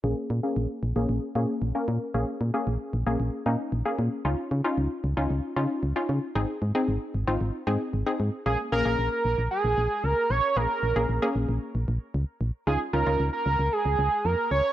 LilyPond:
<<
  \new Staff \with { instrumentName = "Analog synth lead" } { \time 4/4 \key bes \minor \tempo 4 = 114 r1 | r1 | r1 | r1 |
aes'8 bes'8. bes'8. aes'4 bes'8 des''8 | bes'4. r2 r8 | aes'8 bes'8. bes'8. aes'4 bes'8 des''8 | }
  \new Staff \with { instrumentName = "Synth pluck" } { \time 4/4 \key bes \minor <bes des' aes'>8 r16 <bes des' aes'>8. r16 <bes des' aes'>8 r16 <bes des' aes'>8 r16 <bes des' bes'>8 r16 | <bes des' aes'>8 r16 <bes des' aes'>8. r16 <bes des' aes'>8 r16 <bes des' ees'>8 r16 <bes des' aes'>8 r16 | <des' ees' f'>8 r16 <des' ees' f'>8. r16 <des' ees' f'>8 r16 <des' ees' f'>8 r16 <des' ees' f'>8 r16 | <c' ees' aes'>8 r16 <c' ees' aes'>8. r16 <c' ees' f'>8 r16 <c' ees' aes'>8 r16 <c' ees' aes'>8 r16 |
<bes des' aes'>8 <bes des' aes'>16 <bes des' aes'>4.~ <bes des' aes'>16 r4. | <bes des' aes'>8 r16 <bes des' aes'>8 <bes des' aes'>4.~ <bes des' aes'>16 r4 | <des' ees' f'>8 <des' ees' f'>16 <des' ees' f'>4.~ <des' ees' f'>16 r4. | }
  \new Staff \with { instrumentName = "FM bass" } { \clef bass \time 4/4 \key bes \minor bes,,16 r16 bes,16 r16 bes,,16 r16 bes,,16 bes,,16 bes,,16 r16 bes,16 r16 bes,,16 r16 bes,16 r16 | bes,,16 r16 bes,16 r16 bes,,16 r16 bes,,16 bes,,16 bes,,16 r16 bes,16 r16 bes,,16 r16 bes,16 r16 | des,16 r16 des16 r16 des,16 r16 des,16 des,16 des,16 r16 des16 r16 des,16 r16 des16 r16 | aes,,16 r16 aes,16 r16 aes,,16 r16 aes,,16 aes,,16 aes,,16 r16 aes,16 r16 aes,,16 r16 aes,16 r16 |
bes,,16 r16 bes,,16 bes,,16 bes,,16 r16 bes,,16 bes,,16 r16 bes,,16 bes,,16 r16 des,16 r16 bes,,16 r16 | bes,,16 r16 bes,,16 bes,,16 bes,,16 r16 bes,,16 bes,,16 r16 bes,,16 bes,,16 r16 des,16 r16 bes,,16 r16 | des,16 r16 des,16 des,16 des,16 r16 des,16 des,16 r16 des,16 des,16 r16 f,16 r16 des,16 r16 | }
>>